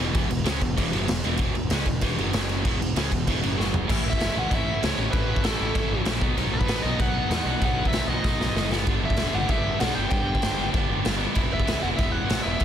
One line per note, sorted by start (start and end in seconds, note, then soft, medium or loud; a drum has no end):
0.00 0.14 E1 loud
0.00 0.11 E2 loud
0.00 0.13 B2 medium
0.00 0.12 E3 loud
0.12 0.29 E1 loud
0.12 0.28 E2 loud
0.12 0.28 B2 loud
0.12 0.29 E3 loud
0.12 kick loud
0.12 crash loud
0.29 0.44 E1 medium
0.29 0.42 E2 medium
0.29 0.42 B2 medium
0.29 crash medium
0.44 0.60 C#2 loud
0.44 0.60 C#3 loud
0.44 0.60 G#3 loud
0.44 0.61 C#4 loud
0.44 snare loud
0.44 crash medium
0.61 0.76 E1 medium
0.61 0.74 E2 medium
0.61 0.74 B2 medium
0.61 kick medium
0.61 crash medium
0.77 0.92 E1 medium
0.77 0.91 E2 loud
0.77 0.92 B2 loud
0.77 0.92 E3 loud
0.77 kick medium
0.77 crash medium
0.92 1.08 F#1 loud
0.92 1.06 F#2 loud
0.92 1.07 C#3 medium
0.92 1.08 F#3 medium
0.92 crash medium
1.07 1.23 E1 medium
1.07 1.20 E2 medium
1.07 1.20 B2 medium
1.07 snare loud
1.07 crash medium
1.24 1.39 E1 loud
1.24 1.38 E2 medium
1.24 1.39 B2 loud
1.24 1.39 E3 loud
1.24 crash medium
1.37 1.54 E1 loud
1.37 1.54 E2 loud
1.37 1.55 B2 loud
1.37 1.55 E3 loud
1.37 kick loud
1.37 crash medium
1.55 1.70 E1 medium
1.55 1.68 E2 medium
1.55 1.69 B2 medium
1.55 crash medium
1.70 1.86 C#2 medium
1.70 1.86 C#3 loud
1.70 1.86 G#3 loud
1.70 1.87 C#4 loud
1.70 snare loud
1.70 crash medium
1.85 2.01 E1 medium
1.85 1.98 E2 medium
1.85 1.99 B2 medium
1.85 kick medium
1.85 crash medium
2.01 2.17 E1 medium
2.01 2.17 E2 loud
2.01 2.17 B2 loud
2.01 2.18 E3 loud
2.01 kick loud
2.01 crash medium
2.18 2.32 F#1 medium
2.18 2.32 F#2 loud
2.18 2.33 C#3 medium
2.18 2.33 F#3 loud
2.18 crash medium
2.33 2.63 F#1 loud
2.33 2.64 F#2 medium
2.33 2.64 C#3 medium
2.33 2.64 F#3 loud
2.33 snare loud
2.33 crash medium
2.49 crash medium
2.65 2.79 E1 medium
2.65 2.80 E2 loud
2.65 2.79 B2 loud
2.65 2.81 E3 loud
2.65 kick loud
2.65 crash medium
2.80 2.95 E1 medium
2.80 2.92 E2 medium
2.80 2.92 B2 medium
2.80 crash medium
2.96 3.10 C#2 loud
2.96 3.11 C#3 loud
2.96 3.11 G#3 medium
2.96 3.12 C#4 loud
2.96 snare loud
2.96 crash medium
3.12 3.26 E1 medium
3.12 3.24 E2 medium
3.12 3.25 B2 medium
3.12 kick medium
3.12 crash medium
3.27 3.42 E1 medium
3.27 3.41 E2 medium
3.27 3.42 B2 medium
3.27 3.42 E3 loud
3.27 kick loud
3.27 crash medium
3.41 3.57 F#1 medium
3.41 3.56 F#2 medium
3.41 3.56 C#3 medium
3.41 3.57 F#3 loud
3.41 crash medium
3.57 3.87 F#1 medium
3.57 3.86 F#2 medium
3.57 3.87 C#3 medium
3.57 3.88 F#3 loud
3.57 snare medium
3.74 floor tom medium
3.87 3.99 A1 loud
3.87 4.17 A2 loud
3.87 4.18 E3 loud
3.87 4.19 A3 loud
3.87 4.19 C#4 loud
3.87 4.20 E4 loud
3.87 kick loud
3.87 crash loud
3.87 crash medium
4.05 4.14 A1 medium
4.10 4.38 E5 loud
4.10 kick medium
4.17 4.29 F#1 medium
4.17 4.34 A2 medium
4.17 4.34 E3 medium
4.17 4.33 A3 loud
4.17 4.32 C#4 loud
4.17 4.31 E4 medium
4.17 snare loud
4.17 crash medium
4.32 4.48 A2 medium
4.32 4.49 E3 medium
4.32 4.49 A3 medium
4.32 4.50 C#4 medium
4.32 4.51 E4 medium
4.37 4.46 A1 loud
4.37 4.53 F#5 loud
4.49 4.70 A1 loud
4.49 4.80 A2 medium
4.49 4.81 E3 loud
4.49 4.81 A3 loud
4.49 4.81 C#4 loud
4.49 4.82 E4 loud
4.49 kick loud
4.49 crash medium
4.55 4.85 E5 loud
4.81 4.92 C#2 medium
4.81 4.98 A2 medium
4.81 4.97 E3 medium
4.81 4.96 A3 medium
4.81 4.96 C#4 medium
4.81 4.96 E4 loud
4.81 5.11 C#5 medium
4.81 snare loud
4.81 crash medium
4.97 5.07 A1 medium
4.97 5.10 A2 medium
4.97 5.11 E3 medium
4.97 5.11 A3 loud
4.97 5.12 C#4 medium
4.97 5.12 E4 medium
5.11 5.32 A1 loud
5.11 5.42 A2 loud
5.11 5.42 E3 loud
5.11 5.42 A3 loud
5.11 5.43 C#4 loud
5.11 5.44 E4 loud
5.11 5.44 B4 medium
5.11 kick loud
5.11 crash medium
5.36 kick loud
5.43 5.54 A1 medium
5.43 5.60 A2 medium
5.43 5.60 E3 medium
5.43 5.59 A3 loud
5.43 5.59 C#4 loud
5.43 5.58 E4 medium
5.43 6.02 A4 medium
5.43 snare loud
5.43 crash medium
5.60 5.70 A1 loud
5.60 5.73 A2 medium
5.60 5.74 E3 medium
5.60 5.74 A3 medium
5.60 5.75 C#4 loud
5.60 5.75 E4 loud
5.74 5.85 A1 medium
5.74 6.03 A2 loud
5.74 6.04 E3 loud
5.74 6.05 A3 loud
5.74 6.05 C#4 loud
5.74 6.06 E4 loud
5.74 kick loud
5.74 crash medium
5.91 6.00 A1 medium
6.05 6.21 A#1 loud
6.05 6.20 A2 medium
6.05 6.20 E3 medium
6.05 6.21 A3 medium
6.05 6.21 C#4 loud
6.05 6.21 E4 loud
6.05 snare loud
6.05 crash medium
6.20 6.31 B1 medium
6.20 6.38 B2 loud
6.20 6.38 F#3 loud
6.20 6.37 B3 loud
6.20 6.37 D#4 loud
6.20 kick loud
6.37 6.47 B1 loud
6.37 6.68 B2 loud
6.37 6.68 F#3 loud
6.37 6.67 B3 loud
6.37 6.66 D#4 loud
6.37 crash medium
6.52 6.61 B1 medium
6.52 6.85 B4 medium
6.61 kick medium
6.66 6.77 A1 medium
6.66 6.84 B2 medium
6.66 6.85 F#3 medium
6.66 6.85 B3 medium
6.66 6.85 D#4 medium
6.66 snare loud
6.66 crash medium
6.82 6.93 B1 loud
6.82 6.99 B2 medium
6.82 6.99 F#3 medium
6.82 6.98 B3 medium
6.82 6.97 D#4 loud
6.82 7.00 D#5 loud
6.99 7.18 B1 medium
6.99 7.30 B2 medium
6.99 7.29 F#3 medium
6.99 7.29 B3 loud
6.99 7.28 D#4 loud
6.99 7.63 F#5 loud
6.99 kick loud
6.99 crash medium
7.29 7.39 E2 loud
7.29 7.44 B2 medium
7.29 7.44 F#3 medium
7.29 7.46 B3 medium
7.29 7.46 D#4 medium
7.29 snare loud
7.29 crash medium
7.45 7.55 B1 medium
7.45 7.63 B2 medium
7.45 7.62 F#3 medium
7.45 7.63 B3 loud
7.45 7.61 D#4 loud
7.62 7.81 B1 loud
7.62 7.95 B2 medium
7.62 7.94 F#3 loud
7.62 7.95 B3 loud
7.62 7.93 D#4 loud
7.62 7.87 F#5 loud
7.62 kick loud
7.62 crash medium
7.85 8.08 E5 loud
7.85 kick medium
7.92 8.01 B1 medium
7.92 8.08 F#3 medium
7.92 8.10 D#4 medium
7.92 snare loud
7.92 crash medium
7.96 8.09 B2 medium
7.96 8.11 B3 medium
8.07 8.17 B1 medium
8.07 8.25 B2 medium
8.07 8.24 F#3 loud
8.07 8.24 B3 loud
8.07 8.23 D#4 loud
8.07 8.24 D#5 loud
8.24 8.33 B1 medium
8.24 8.56 B2 medium
8.24 8.55 F#3 medium
8.24 8.56 B3 loud
8.24 8.54 D#4 loud
8.24 8.68 D#5 medium
8.24 kick loud
8.24 snare medium
8.39 8.49 B1 medium
8.39 snare medium
8.55 8.88 F#1 loud
8.55 8.71 B2 medium
8.55 8.72 F#3 medium
8.55 8.73 B3 medium
8.55 8.72 D#4 medium
8.55 snare loud
8.72 8.86 B2 loud
8.72 8.87 F#3 loud
8.72 8.88 B3 loud
8.72 8.87 D#4 loud
8.72 snare medium
8.87 8.97 G1 loud
8.87 9.18 G2 loud
8.87 9.17 D3 loud
8.87 9.18 G3 loud
8.87 9.19 B3 loud
8.87 9.20 D4 loud
8.87 kick loud
8.87 crash medium
9.03 9.12 G1 loud
9.03 9.35 E5 medium
9.10 kick loud
9.17 9.28 E1 medium
9.17 9.35 G2 medium
9.17 9.34 D3 medium
9.17 9.34 G3 medium
9.17 9.33 B3 loud
9.17 9.32 D4 medium
9.17 snare loud
9.17 crash medium
9.33 9.43 G1 loud
9.33 9.48 G2 medium
9.33 9.48 D3 medium
9.33 9.48 G3 medium
9.33 9.50 B3 loud
9.33 9.50 D4 loud
9.33 9.50 F#5 loud
9.49 9.68 G1 loud
9.49 9.79 G2 loud
9.49 9.80 D3 loud
9.49 9.80 G3 loud
9.49 9.82 B3 loud
9.49 9.81 D4 loud
9.49 9.80 E5 loud
9.49 kick loud
9.49 crash medium
9.80 9.90 B1 medium
9.80 9.96 G2 medium
9.80 9.96 D3 medium
9.80 9.95 G3 medium
9.80 9.95 B3 medium
9.80 9.94 D4 medium
9.80 9.94 F#5 loud
9.80 snare loud
9.80 crash medium
9.94 10.06 G1 loud
9.94 10.10 G2 medium
9.94 10.10 D3 medium
9.94 10.11 G3 medium
9.94 10.12 B3 loud
9.94 10.12 D4 loud
9.94 10.09 G5 loud
10.10 10.30 G1 loud
10.10 10.40 G2 loud
10.10 10.40 D3 loud
10.10 10.41 G3 loud
10.10 10.42 B3 loud
10.10 10.42 D4 loud
10.10 10.69 G5 medium
10.10 kick loud
10.10 crash medium
10.35 kick medium
10.41 10.53 G1 medium
10.41 10.57 G2 medium
10.41 10.57 D3 medium
10.41 10.56 G3 loud
10.41 10.57 B3 medium
10.41 10.55 D4 loud
10.41 snare loud
10.41 crash medium
10.57 10.68 G1 loud
10.57 10.71 G2 medium
10.57 10.72 D3 medium
10.57 10.72 G3 medium
10.57 10.74 B3 medium
10.57 10.73 D4 loud
10.72 10.83 G1 loud
10.72 11.03 G2 loud
10.72 11.03 D3 loud
10.72 11.04 G3 loud
10.72 11.05 B3 loud
10.72 11.04 D4 loud
10.72 kick loud
10.72 crash medium
10.90 10.99 G1 loud
11.04 11.25 G1 loud
11.04 11.19 G2 medium
11.04 11.18 D3 medium
11.04 11.18 G3 medium
11.04 11.18 B3 medium
11.04 11.16 D4 loud
11.04 snare loud
11.04 crash medium
11.18 11.34 G2 medium
11.18 11.33 D3 medium
11.18 11.34 G3 medium
11.18 11.34 B3 loud
11.18 11.33 D4 loud
11.34 11.46 E1 loud
11.34 11.64 E3 medium
11.34 11.65 G#3 loud
11.34 11.65 B3 loud
11.34 11.66 E4 loud
11.34 kick loud
11.34 crash medium
11.53 11.62 E1 loud
11.53 11.82 E5 loud
11.60 kick medium
11.65 11.77 C#2 loud
11.65 11.83 E3 medium
11.65 11.82 G#3 medium
11.65 11.81 B3 loud
11.65 11.81 E4 loud
11.65 snare loud
11.65 crash medium
11.81 11.91 E1 loud
11.81 11.96 E3 medium
11.81 11.95 G#3 medium
11.81 11.97 B3 medium
11.81 11.98 E4 medium
11.81 11.88 F#5 loud
11.96 12.18 E1 medium
11.96 12.27 E3 loud
11.96 12.26 G#3 loud
11.96 12.27 B3 loud
11.96 12.28 E4 loud
11.96 12.11 E5 loud
11.96 kick loud
11.96 crash medium
12.11 12.43 F#5 loud
12.27 12.39 A1 loud
12.27 12.44 E3 medium
12.27 12.43 G#3 medium
12.27 12.42 B3 medium
12.27 12.43 E4 medium
12.27 snare loud
12.27 crash medium
12.43 12.55 E1 medium
12.43 12.57 E3 medium
12.43 12.58 G#3 medium
12.43 12.58 B3 medium
12.43 12.59 E4 loud
12.43 12.65 E5 loud
12.58 12.65 E1 loud
12.58 12.65 E3 loud
12.58 12.65 G#3 loud
12.58 12.65 B3 loud
12.58 12.65 E4 loud
12.58 kick loud
12.58 crash medium